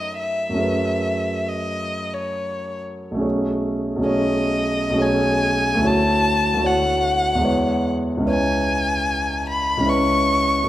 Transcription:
Already playing: grand piano F#2 A3 D#4 A4 C#5, violin D#5
0.19 violin E5
0.49 grand piano F#2 A3
0.55 grand piano C#4 G#4
0.60 grand piano B4
1.48 violin D#5
2.14 violin C#5
3.11 grand piano B1 A3
3.17 grand piano C#4 G#4
3.21 grand piano C#5
3.96 grand piano B1 A3
4.01 grand piano C#4 G#4
4.06 grand piano C#5, violin D#5
4.90 grand piano B1 A3
4.95 grand piano C#4 G#4
5.01 grand piano C#5, violin G#5
5.75 grand piano D2 A3
5.80 grand piano E4 F#4
5.85 grand piano C#5, violin A5
6.54 grand piano D2 A3
6.59 grand piano E4 F#4
6.64 grand piano C#5, violin F#5
7.35 grand piano E2 G#3
7.40 grand piano E4 B4
7.45 grand piano C#5
8.17 grand piano C#2 C#4
8.23 grand piano E4 B4
8.28 grand piano C#5, violin G#5
9.49 violin B5
9.77 grand piano C#2 C#4
9.83 grand piano E4 B4
9.88 grand piano C#5, violin C#6
10.64 grand piano F#2

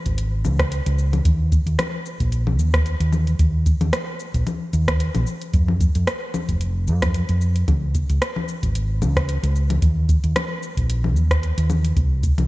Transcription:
0.06 fingered electric bass G#1, kick, closed hi-hat, cabasa
0.18 closed hi-hat, cabasa
0.45 fingered electric bass C#2, low conga, cabasa
0.59 kick, cross-stick, closed hi-hat, cabasa
0.72 closed hi-hat, cabasa
0.86 fingered electric bass C#2, closed hi-hat, cabasa
0.98 cabasa
1.13 closed hi-hat, low conga, cabasa
1.25 fingered electric bass D#2, kick, closed hi-hat, cabasa
1.52 kick, closed hi-hat, cabasa
1.66 fingered electric bass D#2, closed hi-hat, cabasa
1.79 cross-stick, closed hi-hat, low conga, cabasa
2.06 cabasa
2.20 fingered electric bass A#1, kick, closed hi-hat, cabasa
2.32 closed hi-hat, cabasa
2.47 low conga
2.59 fingered electric bass D#2, cabasa
2.74 kick, cross-stick, closed hi-hat, cabasa
2.86 closed hi-hat, cabasa
3.00 fingered electric bass D#2, closed hi-hat, cabasa
3.13 low conga, cabasa
3.27 closed hi-hat, cabasa
3.39 fingered electric bass D#2, kick, closed hi-hat, cabasa
3.66 kick, closed hi-hat, cabasa
3.81 fingered electric bass D#2, closed hi-hat, low conga, cabasa
3.93 cross-stick, closed hi-hat, cabasa
4.20 cabasa
4.34 fingered electric bass A#1, kick, closed hi-hat, cabasa
4.47 closed hi-hat, low conga, cabasa
4.73 fingered electric bass D#2, closed hi-hat, cabasa
4.88 kick, cross-stick, closed hi-hat, cabasa
5.00 closed hi-hat, cabasa
5.15 fingered electric bass A#1, closed hi-hat, low conga, cabasa
5.27 cabasa
5.42 closed hi-hat, cabasa
5.54 fingered electric bass F2, kick, closed hi-hat, cabasa
5.68 low conga
5.80 kick, closed hi-hat, cabasa
5.95 fingered electric bass F2, closed hi-hat, cabasa
6.07 cross-stick, closed hi-hat, cabasa
6.34 low conga, cabasa
6.49 fingered electric bass F1, kick, closed hi-hat, cabasa
6.61 closed hi-hat, cabasa
6.87 fingered electric bass F2, cabasa
7.02 kick, cross-stick, closed hi-hat, low conga, cabasa
7.14 closed hi-hat, cabasa
7.29 fingered electric bass F2, closed hi-hat, cabasa
7.41 cabasa
7.56 closed hi-hat, cabasa
7.68 fingered electric bass C#2, kick, closed hi-hat, low conga, cabasa
7.95 kick, closed hi-hat, cabasa
8.10 fingered electric bass C#2, closed hi-hat, cabasa
8.22 cross-stick, closed hi-hat, cabasa
8.36 low conga
8.48 cabasa
8.63 fingered electric bass G#1, kick, closed hi-hat, cabasa
8.75 closed hi-hat, cabasa
9.02 fingered electric bass C#2, low conga, cabasa
9.16 kick, cross-stick, closed hi-hat, cabasa
9.29 closed hi-hat, cabasa
9.43 fingered electric bass C#2, closed hi-hat, cabasa
9.56 cabasa
9.70 closed hi-hat, low conga, cabasa
9.82 fingered electric bass D#2, kick, closed hi-hat, cabasa
10.09 kick, closed hi-hat, cabasa
10.24 fingered electric bass D#2, closed hi-hat, cabasa
10.36 cross-stick, closed hi-hat, low conga, cabasa
10.63 cabasa
10.77 fingered electric bass A#1, kick, closed hi-hat, cabasa
10.90 closed hi-hat, cabasa
11.04 low conga
11.16 fingered electric bass D#2, cabasa
11.31 kick, cross-stick, closed hi-hat, cabasa
11.43 closed hi-hat, cabasa
11.58 fingered electric bass D#2, closed hi-hat, cabasa
11.70 low conga, cabasa
11.85 closed hi-hat, cabasa
11.96 fingered electric bass C2, kick, closed hi-hat, cabasa
12.23 kick, closed hi-hat, cabasa
12.38 fingered electric bass C2, closed hi-hat, low conga, cabasa

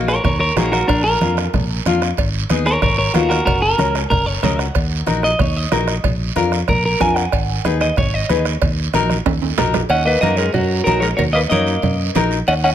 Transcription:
Already playing: fingered electric bass A#1, nylon-string guitar A#3 D#4 F#4
0.08 clean electric guitar A#4 C#5, bombo rim, short guiro
0.24 fingered electric bass D#2, clean electric guitar A#4 C#5, bombo low, bombo rim, cowbell, low conga, long guiro
0.40 clean electric guitar A#4 C#5
0.56 fingered electric bass A#1, nylon-string guitar A#3 D#4 G#4, clean electric guitar F#4 A#4, bombo rim, high conga, low timbale, short guiro
0.72 clean electric guitar F#4 A#4, bombo rim, short guiro
0.88 fingered electric bass A#1, clean electric guitar D4 A#4, bombo low, bombo rim, cowbell, long guiro
1.04 clean electric guitar A#4
1.21 fingered electric bass F2, nylon-string guitar A#3 D4 F4, bombo rim, high conga, short guiro
1.37 bombo rim, short guiro
1.54 fingered electric bass A#1, bombo low, bombo rim, cowbell, low conga, long guiro
1.85 fingered electric bass F2, nylon-string guitar A#3 D4 F4, bombo rim, high conga, short guiro
2.02 bombo rim, short guiro
2.17 fingered electric bass G#1, bombo low, bombo rim, cowbell, long guiro
2.49 fingered electric bass D#2, nylon-string guitar B3 D#4 G#4, bombo rim, high conga, short guiro
2.66 clean electric guitar A#4 C#5, bombo rim, short guiro
2.82 fingered electric bass G#1, clean electric guitar A#4 C#5, bombo low, bombo rim, cowbell, low conga, long guiro
2.98 clean electric guitar A#4 C#5
3.13 fingered electric bass D#2, nylon-string guitar B3 D#4 F4, clean electric guitar F#4 A#4, bombo rim, high conga, low timbale, short guiro
3.29 clean electric guitar F#4 A#4, bombo rim, short guiro
3.45 fingered electric bass F#1, clean electric guitar F#4 A#4, bombo low, bombo rim, cowbell, low conga, long guiro
3.62 clean electric guitar A#4
3.78 fingered electric bass C#2, nylon-string guitar C#4 F#4 A#4, bombo rim, high conga, short guiro
3.95 bombo rim, short guiro
4.10 fingered electric bass F#1, clean electric guitar A#4, bombo low, bombo rim, cowbell, low conga, long guiro
4.26 clean electric guitar C#5
4.42 fingered electric bass C#2, nylon-string guitar C#4 F#4 A#4, clean electric guitar D#5, bombo rim, high conga, low conga, low timbale, short guiro
4.59 clean electric guitar F#5, bombo rim, short guiro
4.75 fingered electric bass D#2, bombo low, bombo rim, cowbell, long guiro
5.06 fingered electric bass A#1, nylon-string guitar D#4 F#4 A#4, bombo rim, high conga, short guiro
5.23 clean electric guitar D#5, bombo rim, short guiro
5.39 fingered electric bass D#2, clean electric guitar C#5, bombo low, bombo rim, cowbell, low conga, long guiro
5.57 clean electric guitar D#5
5.72 fingered electric bass A#1, nylon-string guitar D#4 F#4 A#4, bombo rim, high conga, low timbale, short guiro
5.88 bombo rim, short guiro
6.04 fingered electric bass A#1, bombo low, bombo rim, cowbell, low conga, long guiro
6.36 fingered electric bass F2, nylon-string guitar D4 F4 A#4, bombo rim, high conga, short guiro
6.52 bombo rim, short guiro
6.68 fingered electric bass A#1, clean electric guitar A#4, bombo low, bombo rim, cowbell, low conga, long guiro
6.85 clean electric guitar A#4
7.00 fingered electric bass F2, nylon-string guitar D4 F4 A#4, clean electric guitar G#5, bombo low, bombo rim, high conga, short guiro
7.16 clean electric guitar F#5, bombo rim, short guiro
7.32 fingered electric bass G#1, bombo low, bombo rim, cowbell, long guiro
7.64 fingered electric bass D#2, nylon-string guitar D#4 G#4 B4, bombo rim, high conga, short guiro
7.81 clean electric guitar D#5, bombo rim, short guiro
7.96 fingered electric bass G#1, clean electric guitar C#5, bombo low, bombo rim, cowbell, low conga, long guiro
8.14 clean electric guitar D#5
8.29 fingered electric bass D#2, nylon-string guitar D#4 G#4 B4, bombo rim, high conga, short guiro
8.45 bombo rim, short guiro
8.62 fingered electric bass D#2, bombo low, bombo rim, cowbell, low conga, long guiro
8.93 fingered electric bass A#1, nylon-string guitar D#4 F#4 A#4, bombo rim, high conga, short guiro
9.10 bombo rim, high conga, short guiro
9.26 fingered electric bass D#2, bombo low, bombo rim, cowbell, high conga, high timbale, long guiro
9.42 high timbale
9.58 fingered electric bass A#1, nylon-string guitar D#4 F#4 A#4, bombo rim, low conga, low timbale, short guiro
9.74 bombo rim, low conga, low timbale, short guiro
9.89 fingered electric bass D#2, tenor saxophone C#4, clean electric guitar D#5 F#5, cowbell, long guiro
10.05 tenor saxophone A#3, clean electric guitar B4 D#5
10.21 fingered electric bass F#2, tenor saxophone A#3, nylon-string guitar D#4 F#4 A#4, clean electric guitar A#4 D#5, high conga, short guiro
10.36 tenor saxophone G#3, clean electric guitar A#4 C#5, short guiro
10.52 fingered electric bass F#2, tenor saxophone F#3, clean electric guitar F#4 A#4, cowbell, low conga, long guiro
10.84 fingered electric bass A#1, tenor saxophone F#3, nylon-string guitar D#4 F#4 A#4, clean electric guitar F#4 A#4, high conga, short guiro
11.00 tenor saxophone G#3, clean electric guitar A#4 C#5, short guiro
11.17 fingered electric bass D#2, tenor saxophone F#3, clean electric guitar A#4 C#5, cowbell, low conga, long guiro
11.33 tenor saxophone A#3, clean electric guitar B4 D#5
11.50 fingered electric bass F#2, tenor saxophone A#3, nylon-string guitar D#4 F#4 C#5, clean electric guitar A#4 D#5, high conga, short guiro
11.67 short guiro
11.82 fingered electric bass F#2, cowbell, low conga, long guiro
12.15 fingered electric bass A#1, nylon-string guitar D#4 F#4 A#4, high conga, low timbale, short guiro
12.31 short guiro
12.47 fingered electric bass D#2, tenor saxophone C#4, clean electric guitar D#5 F#5, cowbell, long guiro
12.64 tenor saxophone C#4, clean electric guitar D#5 F#5

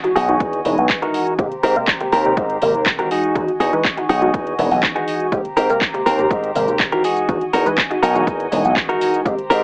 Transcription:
Already playing: string section F#4 D#5 G#5
0.04 analog polysynth E3 G#3 D#4 F#4, muted clean electric guitar stroke, closed hi-hat
0.16 slap bass B1, clean electric guitar D#4 F#4 G#4, open hi-hat
0.29 analog polysynth E3 G#3 D#4 F#4, closed hi-hat
0.40 slap bass E2, kick, closed hi-hat
0.53 closed hi-hat
0.65 slap bass E1, analog polysynth E3 G#3 D#4 B4, open hi-hat
0.78 slap bass B1, closed hi-hat
0.90 kick, clap, closed hi-hat
1.02 analog polysynth E3 G#3 D#4 F#4, clean electric guitar D#4 F#4 A#4, closed hi-hat
1.14 open hi-hat
1.27 closed hi-hat
1.39 slap bass G#2, analog polysynth C3 G#3 A#3 G4, string section G4 C5 A#5, kick, closed hi-hat
1.52 muted slap bass stroke, closed hi-hat
1.63 slap bass G#2, clean electric guitar C4 G4 A#4, open hi-hat
1.76 analog polysynth C3 G#3 A#3 A#4, closed hi-hat
1.88 muted clean electric guitar stroke, kick, clap, closed hi-hat
2.00 analog polysynth C3 G#3 A#3 G4, muted clean electric guitar stroke, closed hi-hat
2.13 slap bass D#2, clean electric guitar C4 G4 A#4, open hi-hat
2.25 analog polysynth C3 G#3 A#3 G4, closed hi-hat
2.37 slap bass G#2, kick, closed hi-hat
2.50 closed hi-hat
2.62 slap bass G#1, analog polysynth C3 G#3 A#3 A#4, open hi-hat
2.75 slap bass D#2, closed hi-hat
2.86 kick, clap, closed hi-hat
2.99 analog polysynth E3 G#3 D#4 F#4, clean electric guitar C4 G4 A#4, closed hi-hat
3.11 clean electric guitar D#4 F#4 G#4, string section F#4 D#5 G#5, open hi-hat
3.24 closed hi-hat
3.35 slap bass E2, analog polysynth E3 G#3 D#4 F#4, kick, closed hi-hat
3.48 muted slap bass stroke, closed hi-hat
3.60 slap bass E2, clean electric guitar D#4 F#4 G#4, open hi-hat
3.73 analog polysynth E3 G#3 D#4 B4, closed hi-hat
3.85 kick, clap, closed hi-hat
3.97 analog polysynth E3 G#3 D#4 F#4, muted clean electric guitar stroke, closed hi-hat
4.09 slap bass B1, clean electric guitar D#4 F#4 G#4, open hi-hat
4.22 analog polysynth E3 G#3 D#4 F#4, closed hi-hat
4.34 slap bass E2, kick, closed hi-hat
4.47 closed hi-hat
4.58 slap bass E1, analog polysynth E3 G#3 B3 D#4, open hi-hat
4.71 slap bass B1, open hi-hat
4.83 kick, clap, closed hi-hat
4.95 analog polysynth E3 G#3 D#4 F#4, clean electric guitar D#4 F#4 G#4, closed hi-hat
5.08 open hi-hat
5.20 closed hi-hat
5.32 slap bass G#2, analog polysynth C3 G#3 A#3 G4, string section G4 C5 A#5, kick, closed hi-hat, shaker
5.45 muted slap bass stroke, closed hi-hat
5.57 slap bass G#2, clean electric guitar C4 G4 A#4, open hi-hat, shaker
5.69 analog polysynth C3 G#3 A#3 A#4, closed hi-hat, shaker
5.81 muted clean electric guitar stroke, kick, clap, closed hi-hat, shaker
5.94 analog polysynth C3 G#3 A#3 G4, muted clean electric guitar stroke, closed hi-hat
6.06 slap bass D#2, clean electric guitar C4 G4 A#4, open hi-hat, shaker
6.18 analog polysynth C3 G#3 A#3 G4, shaker
6.30 slap bass G#2, kick, closed hi-hat, shaker
6.43 closed hi-hat
6.55 slap bass G#1, analog polysynth C3 G#3 A#3 A#4, open hi-hat, shaker
6.68 slap bass D#2, closed hi-hat, shaker
6.80 kick, clap, closed hi-hat, shaker
6.92 analog polysynth E3 G#3 D#4 F#4, clean electric guitar C4 G4 A#4, closed hi-hat
7.04 clean electric guitar D#4 F#4 G#4, string section F#4 D#5 G#5, open hi-hat, shaker
7.17 closed hi-hat, shaker
7.29 slap bass E2, analog polysynth E3 G#3 D#4 F#4, kick, closed hi-hat, shaker
7.41 muted slap bass stroke, closed hi-hat
7.53 slap bass E2, clean electric guitar D#4 F#4 A#4, open hi-hat, shaker
7.66 analog polysynth E3 G#3 D#4 B4, closed hi-hat, shaker
7.78 muted clean electric guitar stroke, kick, clap, closed hi-hat, shaker
7.90 analog polysynth E3 G#3 D#4 F#4, muted clean electric guitar stroke, closed hi-hat
8.03 slap bass B1, clean electric guitar D#4 F#4 A#4, open hi-hat, shaker
8.15 analog polysynth E3 G#3 D#4 F#4, closed hi-hat, shaker
8.27 slap bass E2, kick, closed hi-hat, shaker
8.40 closed hi-hat
8.52 slap bass E1, analog polysynth E3 G#3 B3 D#4, open hi-hat, shaker
8.65 slap bass B1, closed hi-hat, shaker
8.76 kick, clap, closed hi-hat, shaker
8.88 analog polysynth E3 G#3 D#4 F#4, clean electric guitar D#4 F#4 A#4, closed hi-hat
9.01 open hi-hat, shaker
9.14 closed hi-hat, shaker
9.25 slap bass G#2, analog polysynth C3 G#3 A#3 G4, string section G4 C5 A#5, kick, closed hi-hat, shaker
9.38 muted slap bass stroke, closed hi-hat
9.50 slap bass G#2, clean electric guitar C4 G4 A#4, open hi-hat, shaker

